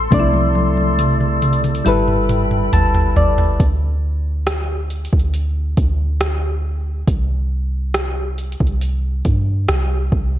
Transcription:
0.00 3.55 A4 medium
0.00 0.12 C5 medium
0.00 1.61 C6 medium
0.00 3.55 E6 medium
0.11 1.82 C2 loud
0.11 1.82 C3 medium
0.11 1.82 A3 medium
0.11 0.19 D4 medium
0.11 1.84 D5 medium
0.11 1.83 D5 medium
0.11 kick loud
0.11 closed hi-hat medium
0.11 high tom medium
0.20 1.85 E4 medium
0.34 high tom medium
0.55 high tom medium
0.77 high tom medium
0.99 closed hi-hat medium
0.99 mid tom medium
1.20 mid tom medium
1.42 closed hi-hat soft
1.42 mid tom medium
1.53 closed hi-hat soft
1.64 closed hi-hat soft
1.64 mid tom medium
1.75 closed hi-hat soft
1.85 2.70 G1 loud
1.85 3.56 G3 medium
1.85 3.56 E4 medium
1.85 3.57 A4 medium
1.85 3.57 B4 medium
1.85 3.58 G5 medium
1.85 3.58 B5 medium
1.85 closed hi-hat medium
1.85 mid tom medium
2.08 mid tom medium
2.29 closed hi-hat medium
2.29 mid tom loud
2.51 mid tom medium
2.73 3.15 G1 loud
2.73 3.13 A5 medium
2.73 closed hi-hat medium
2.73 floor tom loud
2.94 floor tom medium
3.16 3.58 G1 loud
3.16 3.57 D5 medium
3.16 floor tom loud
3.38 floor tom loud
3.60 5.08 D2 loud
3.60 kick loud
3.60 closed hi-hat medium
4.47 cross-stick loud
4.47 closed hi-hat medium
4.90 closed hi-hat medium
5.05 closed hi-hat soft
5.13 5.75 D2 medium
5.13 kick medium
5.19 closed hi-hat soft
5.34 closed hi-hat medium
5.77 7.04 D2 loud
5.77 kick loud
5.77 closed hi-hat medium
6.21 cross-stick loud
6.21 closed hi-hat medium
7.08 8.56 C2 loud
7.08 kick loud
7.08 closed hi-hat medium
7.94 cross-stick loud
7.94 closed hi-hat medium
8.38 closed hi-hat medium
8.52 closed hi-hat soft
8.60 9.23 C2 loud
8.60 kick medium
8.67 closed hi-hat soft
8.81 closed hi-hat medium
9.25 9.67 G2 loud
9.25 kick loud
9.25 closed hi-hat medium
9.68 10.10 C2 loud
9.68 cross-stick loud
9.68 closed hi-hat medium
10.12 10.39 C2 loud
10.12 kick medium

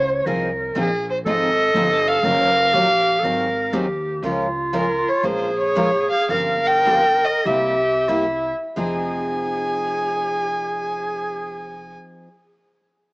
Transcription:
0.00 0.24 C#2 medium
0.00 0.27 C#5 loud
0.26 0.74 C2 medium
0.26 0.49 F3 medium
0.26 0.49 C4 medium
0.26 0.49 D#4 medium
0.26 0.49 G#4 medium
0.26 1.05 A#4 medium
0.76 1.24 A#1 medium
0.76 0.88 F3 medium
0.76 0.88 C4 medium
0.76 0.88 D#4 medium
0.76 0.88 G#4 medium
0.76 1.08 G#4 medium
1.10 1.17 C5 medium
1.25 1.73 G#1 medium
1.25 1.48 F3 medium
1.25 1.49 C4 medium
1.25 1.48 D#4 medium
1.25 1.49 G#4 medium
1.25 2.26 A4 loud
1.25 2.10 D#5 medium
1.74 2.22 G1 medium
1.74 1.87 F3 medium
1.74 1.88 C4 medium
1.74 1.88 D#4 medium
1.74 1.88 G#4 medium
2.08 3.74 F5 loud
2.23 2.72 F#1 medium
2.23 2.47 D#3 medium
2.23 2.47 F#3 medium
2.23 2.47 C#4 medium
2.23 2.47 D#4 medium
2.23 2.75 A#4 loud
2.23 2.47 A#4 medium
2.73 3.22 A#1 medium
2.73 2.86 D#3 medium
2.73 2.86 F#3 medium
2.73 2.86 C#4 medium
2.73 2.86 D#4 medium
2.73 3.21 G4 medium
2.73 2.86 A#4 medium
3.19 3.71 G#1 medium
3.19 3.25 A4 medium
3.24 3.46 D#3 medium
3.24 3.46 F#3 medium
3.24 3.47 C4 medium
3.24 3.47 D#4 medium
3.24 3.47 G#4 medium
3.24 3.75 A#4 loud
3.73 4.21 D#2 medium
3.73 3.85 D#3 medium
3.73 3.85 F#3 medium
3.73 3.85 C4 medium
3.73 3.85 D#4 medium
3.73 4.23 G4 medium
3.73 3.86 G#4 medium
4.22 5.03 C#2 medium
4.22 4.46 C#3 medium
4.22 4.46 F3 medium
4.22 4.47 G#3 medium
4.22 4.47 C#4 medium
4.22 4.47 F4 medium
4.22 5.27 F4 medium
4.22 4.47 A#4 medium
4.73 4.85 C#3 medium
4.73 4.85 F3 medium
4.73 4.85 G#3 medium
4.73 4.85 C#4 medium
4.73 4.85 F4 medium
4.73 4.85 A#4 medium
4.73 5.10 A#4 medium
5.09 5.27 C#5 medium
5.23 6.08 A#1 medium
5.23 5.48 F3 medium
5.23 5.48 G#3 medium
5.23 5.48 C#4 medium
5.23 5.48 F4 medium
5.23 6.32 G#4 medium
5.23 5.48 A#4 medium
5.23 5.58 C5 medium
5.58 6.08 C#5 medium
5.76 5.89 F3 medium
5.76 5.89 G#3 medium
5.76 5.89 C#4 medium
5.76 5.89 F4 medium
5.76 5.89 A#4 medium
6.10 6.28 F5 medium
6.29 7.22 G1 medium
6.29 6.55 C#3 medium
6.29 6.55 F3 medium
6.29 6.56 A#3 medium
6.29 6.55 F4 medium
6.29 6.55 G4 medium
6.29 7.47 A#4 medium
6.29 6.68 F5 loud
6.67 7.27 G5 loud
6.86 7.00 C#3 medium
6.86 7.00 F3 medium
6.86 7.00 A#3 medium
6.86 7.00 F4 medium
6.86 7.01 G4 medium
7.25 7.48 D#5 medium
7.45 8.51 C2 medium
7.45 7.74 C3 medium
7.45 7.74 G3 medium
7.45 7.74 A#3 medium
7.45 7.74 E4 medium
7.45 8.11 G4 medium
7.45 7.74 G4 medium
7.45 8.54 E5 medium
8.08 8.24 C3 medium
8.08 8.24 G3 medium
8.08 8.24 A#3 medium
8.08 8.24 E4 medium
8.08 8.60 E4 medium
8.08 8.24 G4 medium
8.77 11.94 F1 medium
8.77 12.27 F3 medium
8.77 12.27 C4 medium
8.77 12.28 D#4 medium
8.77 11.94 G#4 medium
8.77 12.29 G#4 medium
8.77 11.96 G#5 medium

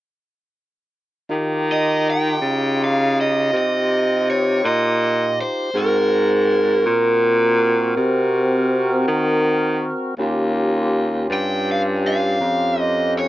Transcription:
1.29 2.38 D#3 medium
1.29 5.70 D#4 medium
1.29 5.70 F4 medium
1.29 5.71 G4 medium
1.72 2.08 D#5 medium
2.10 2.84 G5 loud
2.42 3.50 C#3 medium
2.84 3.20 F5 medium
3.21 3.56 D#5 medium
3.53 4.61 C3 medium
3.53 4.30 D#5 medium
4.30 4.65 C#5 medium
4.64 5.45 A#2 medium
4.64 5.41 D#5 medium
5.41 5.78 C5 medium
5.74 6.82 G#2 medium
5.74 10.15 C4 medium
5.74 10.15 F#4 medium
5.74 10.15 A#4 medium
5.74 8.68 A#4 medium
6.86 7.94 A#2 medium
7.97 9.05 C3 medium
9.08 9.89 D#3 medium
10.18 11.26 D#2 medium
10.18 13.28 C#4 medium
10.18 13.28 F4 medium
10.18 13.28 G4 medium
11.30 12.37 G2 medium
11.30 11.70 G5 loud
11.72 11.81 F5 medium
12.08 12.81 F5 medium
12.41 13.28 F2 medium
12.81 13.13 D#5 medium
13.19 13.28 C#5 medium

